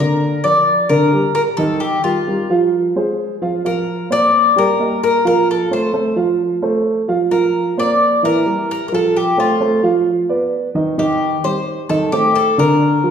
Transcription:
0.00 grand piano D3 D4 D5, cuban tres A#4
0.44 grand piano F3 F4 A#4, cuban tres D5
0.89 grand piano D3 D4 D5, cuban tres A#4
1.13 grand piano G3 G4 A#4
1.35 cuban tres A#4
1.57 grand piano D#3 D#4 D#5, cuban tres A4
1.80 cuban tres G4
2.04 grand piano G3 G4 A#4, cuban tres F4
2.27 grand piano G3 G4 A#4
2.50 grand piano F3 F4 F5
2.96 grand piano G#3 G#4 C5
3.42 grand piano F3 F4 F5
3.65 grand piano F3 F4 F5, cuban tres A#4
4.10 grand piano A#3 A#4 C5, cuban tres D5
4.56 grand piano G3 G4 G5, cuban tres A#4
4.79 grand piano A#3 A#4 D#5
5.03 cuban tres A#4
5.25 grand piano F3 F4 F5, cuban tres A#4
5.51 cuban tres A4
5.71 grand piano A3 A4 C5, cuban tres C5
5.93 grand piano A3 A4 C5
6.16 grand piano F3 F4 F5
6.62 grand piano A3 A4 C5
7.08 grand piano F3 F4 F5
7.31 grand piano F3 F4 F5, cuban tres A#4
7.77 grand piano A#3 A#4 C5, cuban tres D5
8.23 grand piano E3 E4 E5, cuban tres A#4
8.46 grand piano G3 G4 A#4
8.71 cuban tres A#4
8.88 grand piano F3 F4, cuban tres A#4
8.93 cuban tres A4, grand piano F5
9.17 cuban tres G4
9.37 grand piano A3 A4 C5, cuban tres F4
9.60 grand piano A3 A4 C5
9.83 grand piano F3 F4 F5
10.29 grand piano B3 B4 D5
10.75 grand piano D#3 D#4 D#5
10.98 grand piano D#3 D#4 D#5, cuban tres G4
11.44 grand piano G3 G4 C5, cuban tres C5
11.89 grand piano D#3 D#4 D#5, cuban tres A4
12.12 grand piano A3 A4 C5, cuban tres G4
12.35 cuban tres A4
12.58 grand piano D3 D4 D5, cuban tres A#4
13.04 grand piano F3 F4 A#4

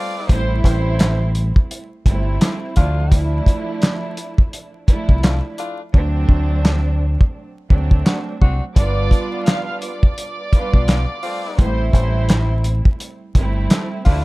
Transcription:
Already playing: saxophone section A3 C4 F4, violin section D5 D6
0.29 fingered electric bass A1, string section G3 A3 C4 E4, violin section C5 C6, kick, closed hi-hat
0.64 fingered electric bass A1, violin section C5 C6, kick, closed hi-hat
0.99 snare, clap, closed hi-hat
1.35 closed hi-hat
1.56 kick
1.71 closed hi-hat
2.06 fingered electric bass G1, string section G3 A3 C4 E4, kick, closed hi-hat
2.41 saxophone section A3 C4 E4, snare, clap, closed hi-hat
2.76 fingered electric bass D2, string section F3 A3 D4 E4, saxophone section A3 D4 F4, kick, closed hi-hat
3.10 string section F3 A3 D4 E4, kick, closed hi-hat
3.46 kick, closed hi-hat
3.82 snare, clap, closed hi-hat
4.17 closed hi-hat
4.38 kick
4.53 closed hi-hat
4.88 string section F3 A3 D4 E4, kick, closed hi-hat
5.09 fingered electric bass C2, kick
5.23 saxophone section A3 D4 F4, snare, clap, closed hi-hat
5.58 saxophone section A3 D4 F4, closed hi-hat
5.94 fingered electric bass D2, string section F#3 A3 C4 D4, kick
6.29 fingered electric bass D2, kick
6.65 snare, clap
7.21 kick
7.70 fingered electric bass D2, string section F#3 A3 C4 D4, kick
7.91 kick
8.05 saxophone section C4 D4 F#4, snare, clap
8.41 fingered electric bass C2, saxophone section C4 D4 F#4, kick
8.75 fingered electric bass G1, string section G3 B3 D4 F4, violin section D5 D6, kick, closed hi-hat
9.11 kick, closed hi-hat
9.46 violin section F5 F6, snare, clap, closed hi-hat
9.66 violin section F5 F6
9.82 violin section D5 D6, closed hi-hat
10.03 kick
10.18 closed hi-hat
10.53 string section G3 B3 D4 F4, kick, closed hi-hat
10.73 fingered electric bass B1, kick
10.88 saxophone section B3 D4 F4, snare, clap, closed hi-hat
11.23 saxophone section A3 C4 F4, open hi-hat
11.58 fingered electric bass A1, string section G3 A3 C4 E4, violin section C5 C6, kick, closed hi-hat
11.93 fingered electric bass A1, violin section C5 C6, kick, closed hi-hat
12.29 snare, clap, closed hi-hat
12.64 closed hi-hat
12.85 kick
13.00 closed hi-hat
13.35 fingered electric bass G1, string section G3 A3 C4 E4, kick, closed hi-hat
13.70 saxophone section A3 C4 E4, snare, clap, closed hi-hat
14.05 fingered electric bass D2, string section F3 A3 D4 E4, saxophone section A3 D4 F4, kick, open hi-hat

